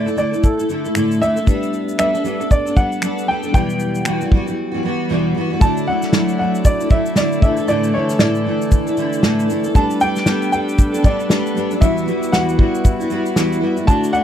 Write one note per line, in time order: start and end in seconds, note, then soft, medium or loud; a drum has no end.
0.00 0.17 D5 medium
0.06 0.16 A3 soft
0.06 0.17 E4 soft
0.06 0.17 A4 medium
0.06 shaker soft
0.16 0.32 D3 medium
0.16 0.33 A3 medium
0.16 0.32 E4 medium
0.16 0.31 A4 medium
0.16 0.45 D5 medium
0.16 shaker soft
0.32 0.59 A3 soft
0.32 0.58 E4 soft
0.32 0.56 A4 soft
0.32 shaker soft
0.44 1.24 A4 medium
0.44 kick medium
0.44 shaker medium
0.58 0.68 A3 soft
0.58 0.69 E4 soft
0.58 0.69 A4 soft
0.58 shaker medium
0.68 0.84 D3 medium
0.68 0.85 A3 medium
0.68 0.84 E4 medium
0.68 0.83 A4 medium
0.68 shaker soft
0.84 0.95 A3 soft
0.84 0.95 E4 soft
0.84 0.95 A4 soft
0.84 shaker soft
0.95 1.21 A2 medium
0.95 1.19 D3 medium
0.95 1.20 A3 medium
0.95 1.21 E4 medium
0.95 1.22 A4 medium
0.95 finger snap medium
0.95 shaker medium
1.12 shaker soft
1.20 1.36 D3 medium
1.20 1.37 A3 medium
1.20 1.36 E4 medium
1.20 1.34 A4 medium
1.20 1.97 E5 medium
1.20 shaker soft
1.36 1.47 A3 soft
1.36 1.47 E4 soft
1.36 1.47 A4 medium
1.36 shaker soft
1.45 1.97 G3 medium
1.45 3.49 A3 medium
1.45 1.98 B3 medium
1.45 3.50 D4 medium
1.45 1.98 D4 medium
1.45 3.50 G4 medium
1.45 1.99 A4 medium
1.45 kick loud
1.45 shaker medium
1.49 3.51 B4 medium
1.63 shaker medium
1.73 shaker soft
1.89 shaker medium
1.98 2.14 G3 medium
1.98 2.14 B3 medium
1.98 2.14 D4 medium
1.98 2.12 A4 medium
1.98 2.47 E5 loud
1.98 finger snap loud
1.98 shaker medium
2.14 2.24 B3 soft
2.14 2.25 D4 medium
2.14 2.24 A4 medium
2.14 shaker soft
2.24 2.40 G3 medium
2.24 2.41 B3 medium
2.24 2.40 D4 medium
2.24 2.38 A4 medium
2.24 shaker soft
2.40 2.68 B3 soft
2.40 2.66 D4 soft
2.40 2.64 A4 medium
2.40 shaker soft
2.51 2.78 D5 medium
2.51 kick medium
2.51 shaker medium
2.65 2.76 B3 soft
2.65 2.77 D4 soft
2.65 2.76 A4 soft
2.65 shaker medium
2.76 3.00 G3 medium
2.76 3.01 B3 medium
2.76 3.02 D4 medium
2.76 3.03 A4 medium
2.76 3.25 F#5 loud
2.76 kick medium
2.76 shaker soft
2.92 shaker soft
3.02 3.26 G3 medium
3.02 3.27 B3 medium
3.02 3.28 D4 medium
3.02 3.29 A4 medium
3.02 finger snap medium
3.02 shaker medium
3.18 shaker soft
3.27 3.43 G3 medium
3.27 3.44 B3 medium
3.27 3.44 D4 medium
3.27 3.42 A4 medium
3.27 3.52 G5 medium
3.43 3.54 B3 soft
3.43 3.55 D4 soft
3.43 3.54 A4 soft
3.43 shaker soft
3.51 4.04 E2 medium
3.51 4.04 B2 medium
3.51 4.06 E3 medium
3.51 5.57 F#3 medium
3.51 5.56 G3 medium
3.51 4.05 G3 medium
3.51 5.57 E4 medium
3.51 5.58 B4 medium
3.51 5.05 G5 loud
3.51 kick loud
3.51 shaker medium
3.56 4.06 B3 medium
3.70 shaker medium
3.80 shaker soft
3.95 shaker medium
4.05 4.21 E2 medium
4.05 4.21 B2 medium
4.05 4.22 E3 medium
4.05 4.22 G3 medium
4.05 4.20 B3 medium
4.05 4.19 F#4 medium
4.05 finger snap loud
4.05 shaker medium
4.20 4.30 E3 soft
4.20 4.31 G3 soft
4.20 4.32 B3 medium
4.20 4.31 F#4 medium
4.20 shaker soft
4.31 4.47 E3 medium
4.31 4.47 G3 medium
4.31 4.46 B3 medium
4.31 4.45 F#4 medium
4.31 kick medium
4.46 4.74 E3 soft
4.46 4.73 G3 soft
4.46 4.72 B3 soft
4.46 4.70 F#4 medium
4.46 shaker soft
4.72 4.82 E3 soft
4.72 4.83 G3 medium
4.72 4.83 B3 medium
4.72 4.83 F#4 medium
4.83 5.09 E3 medium
4.83 5.10 G3 medium
4.83 5.10 B3 medium
4.83 5.10 F#4 medium
5.09 5.35 E2 medium
5.09 5.35 B2 medium
5.09 5.33 E3 medium
5.09 5.34 G3 medium
5.09 5.36 B3 medium
5.09 5.36 F#4 medium
5.35 5.50 E3 medium
5.35 5.51 G3 medium
5.35 5.50 B3 medium
5.35 5.49 F#4 medium
5.50 5.61 E3 soft
5.50 5.62 G3 medium
5.50 5.61 B3 medium
5.50 5.61 F#4 medium
5.59 5.87 D3 medium
5.59 7.40 F#3 medium
5.59 5.85 F#3 medium
5.59 7.38 A3 medium
5.59 5.87 A3 medium
5.59 5.88 D4 medium
5.59 7.40 E4 medium
5.59 7.38 E4 medium
5.59 7.39 F#4 medium
5.59 7.40 A4 medium
5.59 7.40 D5 medium
5.59 5.85 A5 loud
5.59 kick loud
5.59 shaker medium
5.63 5.88 E4 medium
5.77 shaker medium
5.87 6.12 F#3 medium
5.87 6.12 A3 medium
5.87 6.13 D4 medium
5.87 6.14 E4 medium
5.87 6.38 F#5 medium
6.02 snare soft
6.02 shaker medium
6.12 6.38 D3 medium
6.12 6.37 F#3 medium
6.12 6.38 A3 medium
6.12 6.39 D4 medium
6.12 6.40 E4 medium
6.12 snare loud
6.12 shaker medium
6.28 shaker soft
6.38 6.80 F#3 medium
6.38 6.81 A3 medium
6.38 6.80 D4 medium
6.38 6.78 E4 medium
6.38 6.66 F#5 medium
6.55 shaker medium
6.65 6.91 D5 medium
6.65 kick medium
6.65 shaker medium
6.80 6.90 A3 soft
6.80 6.91 D4 soft
6.80 6.90 E4 soft
6.80 shaker medium
6.90 7.15 F#3 medium
6.90 7.16 A3 medium
6.90 7.16 D4 medium
6.90 7.17 E4 medium
6.90 7.17 E5 medium
6.90 kick loud
6.90 shaker soft
7.06 shaker medium
7.16 7.41 D3 medium
7.16 7.41 F#3 medium
7.16 7.42 A3 medium
7.16 7.43 D4 medium
7.16 7.43 E4 medium
7.16 7.41 D5 medium
7.16 snare loud
7.16 shaker medium
7.32 shaker medium
7.40 7.58 D3 medium
7.40 9.73 E3 medium
7.40 9.44 A3 medium
7.40 7.58 A3 medium
7.40 9.45 D4 medium
7.40 11.78 D4 medium
7.40 9.45 E4 medium
7.40 11.78 A4 medium
7.40 9.72 D5 medium
7.40 7.69 E5 medium
7.40 kick loud
7.40 shaker soft
7.44 7.58 E4 medium
7.44 7.56 A4 medium
7.44 9.46 D5 medium
7.57 7.68 A3 soft
7.57 7.68 E4 soft
7.57 7.68 A4 medium
7.57 shaker medium
7.68 7.94 A2 medium
7.68 7.92 D3 medium
7.68 7.93 A3 medium
7.68 7.95 E4 medium
7.68 7.95 A4 medium
7.68 7.95 D5 medium
7.68 shaker medium
7.84 shaker medium
7.93 8.19 D3 medium
7.93 8.20 A3 medium
7.93 8.20 E4 medium
7.93 8.21 A4 medium
7.93 8.21 C#5 medium
8.09 snare soft
8.09 shaker medium
8.19 8.45 A2 medium
8.19 8.44 D3 medium
8.19 8.45 A3 medium
8.19 8.46 E4 medium
8.19 8.47 A4 medium
8.19 9.45 D5 medium
8.19 snare loud
8.19 shaker medium
8.35 shaker soft
8.45 8.87 D3 medium
8.45 8.87 A3 medium
8.45 8.87 E4 medium
8.45 8.85 A4 medium
8.62 shaker soft
8.71 kick medium
8.71 shaker medium
8.87 8.97 A3 soft
8.87 8.98 E4 medium
8.87 8.97 A4 medium
8.87 shaker medium
8.97 9.22 D3 medium
8.97 9.23 A3 medium
8.97 9.24 E4 medium
8.97 9.24 A4 medium
8.97 shaker soft
9.13 shaker soft
9.23 9.49 A2 medium
9.23 9.47 D3 medium
9.23 9.48 A3 medium
9.23 9.49 E4 medium
9.23 9.50 A4 medium
9.23 snare loud
9.23 shaker medium
9.39 shaker medium
9.48 9.64 D3 medium
9.48 9.65 A3 medium
9.48 9.64 E4 medium
9.48 9.62 A4 medium
9.48 shaker soft
9.64 9.75 A3 soft
9.64 9.75 E4 medium
9.64 9.74 A4 medium
9.64 shaker soft
9.73 9.99 G3 medium
9.73 11.79 G3 medium
9.73 11.26 A3 medium
9.73 10.01 B3 medium
9.73 11.27 D4 medium
9.73 10.00 D4 medium
9.73 11.27 G4 medium
9.73 10.02 A4 medium
9.73 13.84 B4 medium
9.73 9.99 A5 loud
9.73 kick loud
9.73 shaker medium
9.77 9.84 A4 medium
9.83 11.30 B4 medium
9.90 shaker medium
10.00 10.25 G3 medium
10.00 10.26 B3 medium
10.00 10.26 D4 medium
10.00 10.27 A4 medium
10.00 10.49 G5 loud
10.00 shaker soft
10.16 snare soft
10.16 shaker medium
10.26 10.50 G3 medium
10.26 10.52 B3 medium
10.26 10.51 D4 medium
10.26 10.53 A4 medium
10.26 snare loud
10.26 shaker medium
10.42 shaker soft
10.51 10.93 G3 medium
10.51 10.93 B3 medium
10.51 10.94 D4 medium
10.51 10.91 A4 medium
10.51 11.06 G5 medium
10.51 shaker medium
10.69 shaker soft
10.78 kick medium
10.78 shaker medium
10.92 11.04 B3 soft
10.92 11.03 D4 soft
10.92 11.03 A4 medium
10.92 shaker medium
11.02 11.28 G3 medium
11.02 11.30 B3 medium
11.02 11.29 D4 medium
11.02 11.30 A4 medium
11.02 11.84 D5 medium
11.02 kick loud
11.02 shaker soft
11.20 shaker soft
11.29 11.54 G3 medium
11.29 11.81 A3 soft
11.29 11.56 B3 medium
11.29 11.81 D4 soft
11.29 11.55 D4 medium
11.29 11.82 G4 soft
11.29 11.57 A4 medium
11.29 11.82 B4 soft
11.29 snare loud
11.29 shaker medium
11.46 shaker soft
11.55 11.71 G3 medium
11.55 11.71 B3 medium
11.55 11.72 D4 medium
11.55 11.69 A4 medium
11.55 shaker soft
11.70 11.81 B3 soft
11.70 11.81 D4 soft
11.70 11.81 A4 soft
11.70 shaker medium
11.80 12.07 E2 medium
11.80 12.07 E3 medium
11.80 13.84 G3 medium
11.80 13.86 G3 medium
11.80 12.05 G3 medium
11.80 12.06 B3 medium
11.80 13.84 E4 medium
11.80 13.86 E4 medium
11.80 12.08 E4 medium
11.80 14.24 F#4 medium
11.80 12.07 F#4 medium
11.80 13.85 F#4 medium
11.80 13.85 B4 medium
11.80 12.35 E5 medium
11.80 kick loud
11.80 shaker medium
11.97 shaker medium
12.06 12.32 G3 medium
12.06 12.33 B3 medium
12.06 12.34 E4 medium
12.06 12.33 F#4 medium
12.06 shaker soft
12.23 shaker medium
12.32 12.59 E2 medium
12.32 12.59 E3 medium
12.32 12.57 G3 medium
12.32 12.58 B3 medium
12.32 12.60 E4 medium
12.32 12.59 F#4 medium
12.32 13.32 F#5 medium
12.32 snare loud
12.32 shaker medium
12.49 shaker soft
12.58 13.00 G3 medium
12.58 13.01 B3 medium
12.58 12.99 E4 medium
12.58 13.00 F#4 medium
12.58 kick medium
12.75 shaker medium
12.85 kick medium
12.85 shaker medium
13.00 13.09 G3 soft
13.00 13.10 B3 medium
13.00 13.10 E4 medium
13.00 13.11 F#4 medium
13.00 shaker medium
13.10 13.36 G3 medium
13.10 13.36 B3 medium
13.10 13.37 E4 medium
13.10 13.36 F#4 medium
13.10 shaker medium
13.26 shaker soft
13.36 13.62 E2 medium
13.36 13.62 E3 medium
13.36 13.60 G3 medium
13.36 13.61 B3 medium
13.36 13.63 E4 medium
13.36 13.62 F#4 medium
13.36 snare loud
13.36 shaker medium
13.53 shaker medium
13.61 13.77 G3 medium
13.61 13.78 B3 medium
13.61 13.75 E4 medium
13.61 13.77 F#4 medium
13.77 13.87 G3 soft
13.77 13.88 B3 soft
13.77 13.88 E4 soft
13.77 13.88 F#4 soft
13.77 shaker medium
13.86 14.14 D3 medium
13.86 14.24 A3 medium
13.86 14.11 A3 medium
13.86 14.12 D4 medium
13.86 14.24 E4 medium
13.86 14.14 E4 medium
13.86 14.24 F#4 medium
13.86 14.13 F#4 medium
13.86 14.24 D5 medium
13.86 14.15 A5 loud
13.86 kick loud
13.86 shaker medium
13.90 14.24 D5 medium
14.04 shaker medium
14.12 14.24 A3 medium
14.12 14.24 D4 medium
14.12 14.24 E4 medium
14.12 14.24 F#4 medium
14.12 14.24 F#5 loud
14.12 shaker soft